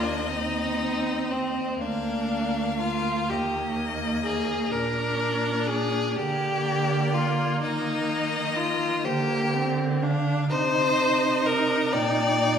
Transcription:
Already playing: cello D#2, viola A#3, violin D#5
0.03 violin D4
0.29 viola C4, violin D#4
1.31 violin C4
1.82 cello D2, viola A#3, violin D4 F5
2.79 violin F4
3.29 cello D#2, viola A#3, violin G4 D#5
4.24 violin G#4
4.72 cello A#2, viola D4, violin A#4 D5
5.67 violin G#4
6.16 cello D3, viola A#3, violin G4 D5
7.14 violin F4
7.61 cello D#3, violin D#4 D#5
8.56 violin F4
9.04 cello D3, viola A#3, violin G4 C5
9.54 viola C4, violin A#4
10.02 viola D4, violin F5
10.49 cello C3, viola D#4, violin C5 D#5
11.46 violin A#4
11.92 cello A#2, violin D5 G5

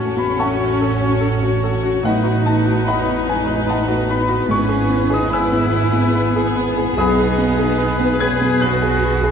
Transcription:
Already playing: double bass section A1, grand piano A2 C#4 F#4 C#5 F#5 A5, cello section A3, viola section C#4, french horn section C#4 F#4, clarinet F#4, violin section F#4 A4, oboe C#5, flute A5
0.17 cello section B3, grand piano F#4 B5, flute B5
0.38 cello section C#4, grand piano A4 F#5 A5 C#6, flute C#6
0.60 grand piano C#4
0.81 grand piano A4
1.01 grand piano C#4
1.21 grand piano A4
1.43 grand piano F#4
1.64 grand piano A4
1.83 grand piano F#4
2.03 grand piano A2 B4 D#5 F#5, cello section F#3, french horn section B3 D#4, viola section D#4, clarinet D#4, oboe B4, violin section B4, flute F#5
2.24 grand piano F#4
2.46 cello section A3, grand piano D#4 A5, flute A5
2.66 grand piano F#4
2.85 cello section B3, grand piano B4 D#5 F#5 B5, flute B5
3.06 grand piano D#4
3.27 cello section G#3, grand piano B4 G#5, flute G#5
3.47 grand piano D#4
3.67 cello section A3, grand piano B4 F#5 A5, flute A5
3.71 grand piano D#5
3.88 grand piano F#4
4.09 cello section B3, grand piano B4 B5, flute B5
4.29 grand piano F#4
4.49 double bass section G#1, grand piano G#2 C#6, viola section B3, cello section C#4, french horn section E4, clarinet E4, violin section G#4, flute C#6
4.69 grand piano G#4
4.89 grand piano B3
5.10 cello section D#4, grand piano G#4 D#6, flute D#6
5.30 cello section E4, grand piano B4 E6, flute E6
5.34 grand piano G#5 B5
5.52 grand piano B3
5.72 grand piano B4
5.93 grand piano B3
6.15 grand piano B4
6.36 grand piano G#4
6.56 grand piano B4
6.77 grand piano G#4
6.97 grand piano B1 G#5 B5 D#6, double bass section B1, french horn section B3 G#4, cello section D#4, clarinet G#4, violin section B4, oboe B4, flute D#6
7.18 grand piano G#4
7.38 grand piano B3
7.59 grand piano G#4
7.78 grand piano B4
8.00 grand piano B3
8.20 cello section G#4, grand piano B4 G#6, flute G#6
8.41 grand piano B3
8.60 cello section F#4, grand piano B4 F#6, flute F#6
8.82 grand piano G#4
9.04 grand piano B4
9.24 grand piano G#4

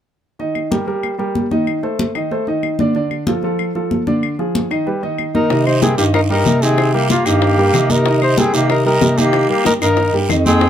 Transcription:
0.39 grand piano D#3 D#4 D#5, high conga
0.55 high conga, claves
0.71 grand piano G3 G4 A#4, high conga
0.87 grand piano G3 G4 A#4, high conga
1.03 high conga, claves
1.18 grand piano G3 G4 A#4, high conga
1.35 high conga
1.51 grand piano D#3 D#4 D#5, high conga
1.67 high conga, claves
1.83 grand piano A3 A4 C5, high conga
1.99 high conga
2.15 grand piano D#3 D#4 D#5, high conga, claves
2.31 grand piano A3 A4 C5, high conga
2.47 grand piano D#3 D#4 D#5, high conga
2.63 high conga, claves
2.79 grand piano D3 D4 D5, high conga
2.95 grand piano D3 D4 D5, high conga
3.11 high conga, claves
3.27 grand piano F3 F4 A4, high conga
3.43 grand piano F3 F4 A4, high conga
3.59 high conga, claves
3.75 grand piano F3 F4 A4, high conga
3.91 high conga
4.07 grand piano D3 D4 D5, high conga
4.23 high conga, claves
4.39 grand piano F3 F4 G#4, high conga
4.55 high conga
4.70 grand piano D#3 D#4 D#5, high conga, claves
4.86 grand piano G3 G4 B4, high conga
5.03 grand piano D#3 D#4 D#5, high conga
5.18 high conga, claves
5.34 grand piano D#3 D#4 D#5, tenor saxophone D#4, trumpet A#4, high conga
5.50 bass clarinet C3, grand piano D#3 D#4 D#5, high bongo, high conga, long guiro
5.66 tenor saxophone D#4, trumpet C5, high bongo, high conga, claves
5.82 grand piano G3 G4 A#4, tenor saxophone C4, trumpet G#4, high bongo, high conga, short guiro
5.98 bass clarinet G2, grand piano D#3 D#4 D#5, tenor saxophone A#3, trumpet G4, high bongo, high conga, short guiro
6.14 tenor saxophone D#4, trumpet A#4, high bongo, high conga, long guiro, claves
6.30 grand piano G3 G4 A#4, tenor saxophone D#4, trumpet A#4, high bongo, high conga
6.46 bass clarinet C3, high bongo, low bongo, high conga, short guiro
6.62 grand piano D#3 D#4 D#5, tenor saxophone C4, trumpet G#4, short guiro
6.78 high bongo, high conga, long guiro, claves
6.94 grand piano G3 G4 A#4, tenor saxophone A#3, trumpet G4, high bongo, high conga
7.10 tenor saxophone A#3, trumpet F4, high bongo, high conga, short guiro
7.25 bass clarinet G2, grand piano D#3 D#4 D#5, tenor saxophone A#3, trumpet G4, high bongo, high conga, short guiro, claves
7.42 high bongo, high conga, long guiro
7.58 grand piano G3 G4 A#4, high bongo, high conga
7.73 bass clarinet C3, grand piano D#3 D#4 D#5, high bongo, low bongo, high conga, short guiro, claves
7.90 tenor saxophone D#4, trumpet A#4, high conga, short guiro
8.06 grand piano D#3 D#4 D#5, high bongo, high conga, long guiro
8.22 tenor saxophone D#4, trumpet C5, high bongo, high conga, claves
8.38 grand piano G3 G4 A#4, tenor saxophone C4, trumpet G#4, high bongo, high conga, short guiro
8.53 bass clarinet C3, grand piano D#3 D#4 D#5, tenor saxophone A#3, trumpet G4, high bongo, high conga, short guiro
8.70 tenor saxophone D#4, trumpet A#4, high bongo, high conga, long guiro, claves
8.85 grand piano G3 G4 A#4, tenor saxophone D#4, trumpet A#4, high bongo, high conga
9.01 bass clarinet C3, high bongo, low bongo, high conga, short guiro
9.17 grand piano D#3 D#4 D#5, tenor saxophone A#3, trumpet G4, high conga, short guiro
9.33 high bongo, high conga, long guiro, claves
9.49 grand piano G3 G4 A#4, tenor saxophone A#3, trumpet G4, high bongo, high conga
9.65 tenor saxophone D#4, trumpet A#4, high bongo, high conga, short guiro
9.81 bass clarinet G2, grand piano D#3 D#4 D#5, tenor saxophone D#4, trumpet A#4, high bongo, high conga, short guiro, claves
9.97 high bongo, high conga, long guiro
10.13 bass clarinet G2, grand piano G3 G4 A#4, high bongo, high conga
10.29 bass clarinet F2, grand piano D#3 D#4 D#5, high bongo, low bongo, high conga, short guiro, claves
10.46 tenor saxophone C4, trumpet G#4, high conga, short guiro
10.61 grand piano D#3 D#4 D#5, high bongo, high conga, long guiro

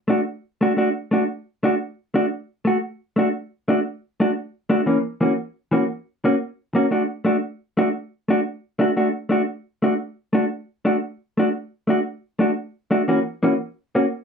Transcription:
0.08 clean electric guitar A3 D4 F#4
0.61 clean electric guitar A3 D4 F#4
0.77 clean electric guitar A3 D4 F#4
1.11 clean electric guitar A3 D4 F#4
1.63 clean electric guitar A3 D4 F#4
2.14 clean electric guitar A3 D4 F#4
2.65 clean electric guitar A3 F#4
3.16 clean electric guitar A3 D4 F#4
3.68 clean electric guitar A3 D4 F#4
4.20 clean electric guitar A3 D4 F#4
4.70 clean electric guitar A3 D4 F#4
4.86 clean electric guitar E3 A#3 C#4, muted clean electric guitar stroke
5.21 clean electric guitar E3 A#3 C#4 F#4
5.71 clean electric guitar E3 A#3 C#4 F#4
6.24 clean electric guitar A#3 C#4 F#4, muted clean electric guitar stroke
6.73 clean electric guitar A#3 C#4 F#4, muted clean electric guitar stroke
6.91 clean electric guitar A3 D4 F#4
7.25 clean electric guitar A3 D4 F#4
7.77 clean electric guitar A3 D4 F#4
8.28 clean electric guitar A3 D4 F#4
8.79 clean electric guitar A3 D4 F#4
8.97 clean electric guitar A3 D4 F#4
9.29 clean electric guitar A3 D4 F#4
9.82 clean electric guitar A3 D4 F#4
10.33 clean electric guitar A3 D4 F#4
10.85 clean electric guitar A3 D4 F#4
11.38 clean electric guitar A3 D4 F#4
11.87 clean electric guitar A3 D4 F#4
12.39 clean electric guitar A3 D4 F#4
12.91 clean electric guitar A3 D4 F#4
13.08 clean electric guitar E3 A#3 C#4 F#4
13.43 clean electric guitar E3 A#3 C#4 F#4
13.95 clean electric guitar A#3 C#4 F#4

